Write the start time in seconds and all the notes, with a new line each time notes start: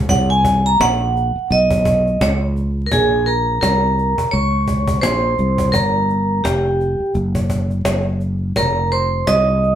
0.09 C2 F#5, cajon bass
0.30 G#5
0.45 cajon bass
0.66 A#5
0.80 A#1 F#5, cajon slap
1.16 cajon slap
1.36 muted fretless electric bass stroke
1.50 B1 D#5, cajon slap
1.71 cajon bass
1.85 cajon bass
2.07 cajon slap
2.21 C#2 C#5, cajon slap
2.56 cajon slap
2.86 A#4
2.91 A#1 G#4 G#5, cajon bass
3.26 A#4 A#5, cajon slap
3.61 C2 A#4 A#5, cajon slap
3.99 cajon slap
4.18 muted fretless electric bass stroke, cajon bass
4.31 C#2 C#5 C#6, cajon slap
4.68 cajon bass
4.88 cajon bass
5.01 A#1 C5 C6, cajon slap
5.38 C2, cajon slap
5.58 cajon bass
5.72 G1 A#4 A#5, cajon bass
6.09 cajon slap
6.44 F1 G4 G5, cajon slap
6.81 cajon slap
7.00 muted fretless electric bass stroke
7.14 F#1, cajon slap
7.35 cajon bass
7.50 cajon bass
7.70 cajon slap
7.85 F#1, cajon slap
8.20 cajon slap
8.56 F1 A#4 A#5, cajon bass
8.92 C5 C6, cajon slap
9.27 C2 D#5 D#6, cajon slap
9.64 cajon slap